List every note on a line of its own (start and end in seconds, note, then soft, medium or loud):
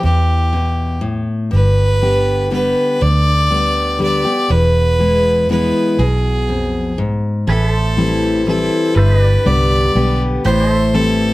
0.03 0.98 E2 medium
0.03 1.25 E2 medium
0.03 0.99 G4 medium
0.53 1.00 B2 medium
1.01 1.49 A2 medium
1.51 2.74 G1 medium
1.51 2.46 G2 medium
1.51 2.48 B4 medium
2.01 2.49 D3 soft
2.01 2.49 G3 soft
2.01 2.49 B3 medium
2.01 2.50 G4 medium
2.51 2.98 D3 medium
2.51 2.99 G3 medium
2.51 2.99 B3 medium
2.51 2.99 G4 medium
2.51 3.04 B4 medium
3.02 4.23 D2 medium
3.02 4.01 D5 loud
3.50 3.97 D3 soft
3.50 3.98 G3 medium
3.50 3.98 B3 medium
3.50 3.98 G4 medium
3.99 4.23 D3 medium
3.99 4.23 G3 medium
3.99 4.24 B3 medium
3.99 4.24 G4 medium
4.03 4.52 D5 medium
4.25 4.49 B3 soft
4.25 4.49 G4 medium
4.49 5.71 E1 medium
4.49 5.44 E2 medium
4.49 5.49 B4 loud
4.99 5.46 E3 medium
4.99 5.47 G#3 medium
4.99 5.47 B3 medium
4.99 5.47 E4 medium
5.49 5.96 E3 medium
5.49 5.96 G#3 medium
5.49 5.97 B3 medium
5.49 5.97 E4 medium
5.49 6.01 B4 medium
5.99 7.20 B1 medium
5.99 6.93 B2 medium
5.99 6.98 G#4 medium
6.49 6.96 F2 medium
6.98 7.45 G#2 medium
7.47 8.69 A1 medium
7.47 8.42 A2 medium
7.47 7.69 G#4 medium
7.47 8.43 A4 medium
7.47 7.69 B4 medium
7.47 8.96 E5 medium
7.69 8.95 A4 medium
7.69 8.96 C5 medium
7.97 8.44 E3 soft
7.97 8.44 G3 soft
7.97 8.44 C4 medium
7.97 8.44 E4 medium
8.47 8.94 E3 medium
8.47 8.94 G3 medium
8.47 8.94 C4 medium
8.47 8.95 E4 medium
8.47 8.97 A4 medium
8.95 9.36 G1 medium
8.95 9.90 G2 medium
8.95 9.22 A4 medium
8.95 9.48 B4 medium
8.95 9.18 C5 medium
8.95 9.24 E5 medium
9.18 10.44 G4 medium
9.18 10.44 B4 medium
9.24 10.45 D5 medium
9.45 9.88 C2 medium
9.45 9.92 D3 medium
9.45 9.92 G3 medium
9.45 9.93 B3 medium
9.45 9.93 G4 soft
9.45 10.20 D5 medium
9.95 10.37 B1 medium
9.95 10.42 D3 medium
9.95 10.42 G3 medium
9.95 10.42 B3 medium
9.95 10.43 G4 medium
10.45 11.34 A1 medium
10.45 11.34 A2 medium
10.45 10.71 G4 medium
10.45 10.67 B4 medium
10.45 10.96 C5 loud
10.45 10.74 D5 medium
10.67 11.34 A4 medium
10.67 11.34 C5 medium
10.74 11.34 E5 medium
10.94 11.34 E3 medium
10.94 11.34 G3 soft
10.94 11.34 C4 medium
10.94 11.34 E4 medium
10.94 11.34 A4 medium